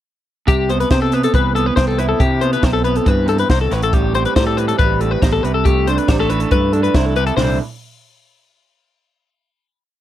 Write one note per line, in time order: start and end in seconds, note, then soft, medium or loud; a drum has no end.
0.47 0.83 C2 medium
0.47 1.34 C3 medium
0.47 0.70 G4 medium
0.47 kick loud
0.47 closed hi-hat medium
0.69 1.13 B3 medium
0.69 0.80 C5 medium
0.69 closed hi-hat medium
0.80 0.91 B4 medium
0.80 closed hi-hat medium
0.90 1.26 C3 medium
0.90 1.77 C4 medium
0.90 1.02 C5 medium
0.90 kick loud
0.90 snare loud
0.90 closed hi-hat medium
1.02 1.13 A4 medium
1.12 1.54 B3 medium
1.12 1.24 B4 medium
1.12 closed hi-hat medium
1.23 1.34 A4 medium
1.23 closed hi-hat medium
1.34 1.69 C2 medium
1.34 3.05 E3 medium
1.34 1.55 B4 medium
1.34 kick loud
1.34 closed hi-hat medium
1.55 2.17 B3 medium
1.55 1.66 A4 medium
1.55 closed hi-hat medium
1.66 1.76 B4 medium
1.76 2.13 C2 medium
1.76 2.45 C4 medium
1.76 1.87 C5 medium
1.76 kick loud
1.76 snare loud
1.76 closed hi-hat medium
1.88 1.98 A4 medium
1.98 5.49 E4 medium
1.98 2.08 B4 medium
1.98 closed hi-hat medium
2.09 2.20 A4 medium
2.20 2.56 C3 medium
2.20 3.07 C3 medium
2.20 2.42 G4 medium
2.20 kick loud
2.20 closed hi-hat medium
2.41 2.83 B3 medium
2.41 2.52 C5 medium
2.41 closed hi-hat medium
2.53 2.64 B4 medium
2.53 closed hi-hat medium
2.63 2.99 B1 medium
2.63 4.15 C4 medium
2.63 2.73 C5 medium
2.63 kick loud
2.63 snare loud
2.63 closed hi-hat medium
2.73 2.84 A4 medium
2.84 3.68 B3 medium
2.84 2.97 B4 medium
2.84 closed hi-hat medium
2.96 3.08 A4 medium
2.96 closed hi-hat medium
3.05 3.42 G2 medium
3.05 4.57 E3 medium
3.05 3.29 B4 medium
3.05 kick loud
3.05 closed hi-hat medium
3.26 3.49 C3 medium
3.26 3.39 A4 medium
3.26 closed hi-hat medium
3.38 3.50 B4 medium
3.38 closed hi-hat medium
3.49 3.67 C2 medium
3.49 3.70 B2 medium
3.49 3.61 C5 medium
3.49 kick loud
3.49 snare loud
3.49 closed hi-hat medium
3.61 3.73 A4 medium
3.71 4.25 A1 medium
3.71 5.00 A2 medium
3.71 3.83 B4 medium
3.71 snare soft
3.71 closed hi-hat medium
3.82 3.94 A4 medium
3.82 closed hi-hat medium
3.93 4.37 G3 medium
3.93 4.15 G4 medium
3.93 kick loud
3.93 closed hi-hat medium
4.15 5.88 C4 medium
4.15 4.25 C5 medium
4.15 closed hi-hat medium
4.25 4.36 B4 medium
4.25 closed hi-hat medium
4.36 4.72 A2 medium
4.36 4.79 G3 medium
4.36 4.46 C5 medium
4.36 kick loud
4.36 snare loud
4.36 closed hi-hat medium
4.47 4.57 A4 medium
4.57 5.91 E3 medium
4.57 4.68 B4 medium
4.57 closed hi-hat medium
4.68 4.78 A4 medium
4.68 closed hi-hat medium
4.79 5.15 A1 medium
4.79 5.66 G3 medium
4.79 5.01 B4 medium
4.79 kick loud
4.79 closed hi-hat medium
5.01 5.22 A2 medium
5.01 5.11 A4 medium
5.01 closed hi-hat medium
5.11 5.22 B4 medium
5.22 5.40 A1 medium
5.22 5.44 B2 medium
5.22 5.32 C5 medium
5.22 kick loud
5.22 snare loud
5.22 closed hi-hat medium
5.33 5.43 A4 medium
5.43 5.97 C2 medium
5.43 6.31 C3 medium
5.43 5.54 B4 medium
5.43 closed hi-hat medium
5.54 5.65 A4 medium
5.65 6.08 A3 medium
5.65 5.87 G4 medium
5.65 kick loud
5.65 closed hi-hat medium
5.87 6.72 D4 medium
5.87 5.98 C5 medium
5.87 closed hi-hat medium
5.98 6.08 B4 medium
5.98 closed hi-hat medium
6.08 6.44 A1 medium
6.08 6.19 G3 medium
6.08 6.19 C5 medium
6.08 kick loud
6.08 snare loud
6.08 closed hi-hat medium
6.19 6.52 A3 soft
6.19 6.30 A4 medium
6.30 7.14 E3 medium
6.30 6.41 B4 medium
6.30 closed hi-hat medium
6.40 6.51 A4 medium
6.40 closed hi-hat medium
6.51 6.87 G2 medium
6.51 7.15 A3 medium
6.51 6.73 B4 medium
6.51 kick loud
6.51 closed hi-hat medium
6.73 7.14 D4 medium
6.73 6.83 A4 medium
6.73 closed hi-hat medium
6.83 6.95 B4 medium
6.83 closed hi-hat medium
6.94 7.30 C2 medium
6.94 7.40 E4 medium
6.94 7.06 C5 medium
6.94 kick loud
6.94 snare loud
6.94 closed hi-hat medium
7.06 7.16 A4 medium
7.16 7.36 C3 medium
7.16 7.26 B4 medium
7.16 closed hi-hat medium
7.27 7.36 A4 medium
7.27 closed hi-hat medium
7.37 7.58 C2 medium
7.37 7.58 C3 medium
7.37 7.58 E3 medium
7.37 7.59 A3 medium
7.37 7.57 C5 medium
7.37 snare medium
7.37 floor tom medium
7.37 open hi-hat medium
7.41 7.59 D4 medium
7.41 7.59 E4 medium